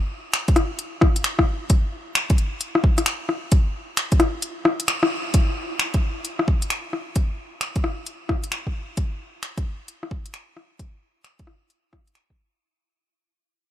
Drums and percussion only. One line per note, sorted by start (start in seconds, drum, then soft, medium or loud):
0.34 finger snap loud
0.34 closed hi-hat medium
0.48 kick loud
0.48 closed hi-hat soft
0.56 cross-stick medium
0.56 closed hi-hat soft
0.79 closed hi-hat medium
1.01 kick loud
1.01 cross-stick medium
1.16 closed hi-hat medium
1.24 finger snap loud
1.24 closed hi-hat medium
1.39 kick medium
1.39 cross-stick medium
1.70 kick loud
1.70 closed hi-hat medium
2.15 finger snap loud
2.15 closed hi-hat medium
2.30 kick loud
2.30 closed hi-hat soft
2.38 closed hi-hat soft
2.61 closed hi-hat medium
2.75 cross-stick medium
2.84 kick loud
2.98 cross-stick soft
2.98 closed hi-hat medium
3.06 finger snap loud
3.06 closed hi-hat medium
3.29 cross-stick soft
3.52 kick loud
3.52 closed hi-hat medium
3.97 finger snap loud
3.97 closed hi-hat medium
4.12 kick loud
4.12 closed hi-hat soft
4.20 cross-stick medium
4.20 closed hi-hat soft
4.42 closed hi-hat medium
4.65 cross-stick medium
4.80 closed hi-hat medium
4.88 finger snap loud
4.88 closed hi-hat medium
5.03 cross-stick medium
5.34 kick loud
5.34 closed hi-hat medium
5.79 finger snap loud
5.79 closed hi-hat medium
5.94 kick loud
5.94 closed hi-hat soft
6.25 closed hi-hat medium
6.39 cross-stick medium
6.48 kick loud
6.62 closed hi-hat medium
6.70 finger snap loud
6.70 closed hi-hat medium
6.93 cross-stick soft
7.16 kick loud
7.16 closed hi-hat medium
7.61 finger snap loud
7.61 closed hi-hat medium
7.76 kick loud
7.76 closed hi-hat soft
7.84 cross-stick medium
8.06 closed hi-hat medium
8.29 kick loud
8.29 cross-stick medium
8.44 closed hi-hat medium
8.52 finger snap loud
8.52 closed hi-hat medium
8.67 kick medium
8.97 kick loud
8.97 closed hi-hat medium
9.43 finger snap loud
9.43 closed hi-hat medium
9.57 kick loud
9.57 closed hi-hat soft
9.88 closed hi-hat medium
10.03 cross-stick soft
10.11 kick loud
10.26 closed hi-hat medium
10.34 finger snap loud
10.34 closed hi-hat medium
10.57 cross-stick soft
10.79 kick loud
10.79 closed hi-hat soft
11.24 finger snap loud
11.24 closed hi-hat soft
11.39 kick loud
11.39 closed hi-hat soft
11.47 cross-stick soft
11.70 closed hi-hat soft
11.93 kick medium
11.93 cross-stick medium
12.07 closed hi-hat soft
12.15 finger snap loud
12.15 closed hi-hat soft
12.30 kick medium